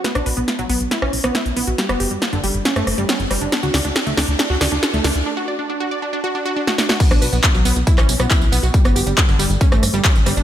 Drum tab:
CC |----------------|----------------|----------------|----------------|
HH |xxoxxxoxx-o-xxox|xxoxxxoxxxoxxxox|xxoxxxoxx-oxxxox|----------------|
TB |----------------|----------------|----------------|----------------|
CP |----------------|----------------|----------------|----------------|
SD |or--o---or-ro---|or--o---orr-o-r-|o-o-o-o-o-o-o-o-|-------------ooo|
BD |----------------|----------------|----------------|----------------|

CC |x---------------|----------------|
HH |xxoxx-oxx-o-xxox|xxoxx-oxx-oxxxox|
TB |xxxxxxxxxxxxxxxx|xxxxxxxxxxxxxxxx|
CP |----x----x--x---|----x-------x---|
SD |-r-------r-r----|-r-------rr---r-|
BD |o---o---o---o---|o---o---o---o---|